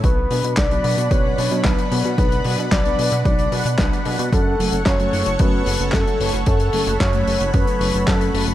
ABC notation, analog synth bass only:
X:1
M:4/4
L:1/16
Q:1/4=112
K:F#m
V:1 name="Analog synth bass" clef=bass
B,,,2 B,, B,, B,,,2 B,, B,, B,,,2 B,, B,, B,,, z B,, B,, | B,,,2 B,, B,, B,,,2 B,, B,, B,,,2 B,, B,, B,,, z B,, B,, | F,,2 F,,, F,,, F,,2 F,,, F,,, F,,2 F,,, F,,, F,, z F,,, F,,, | F,,2 F,,, F,,, F,,2 F,,, F,,, F,, z F,,, F,,, F,,2 F,,, F,,, |]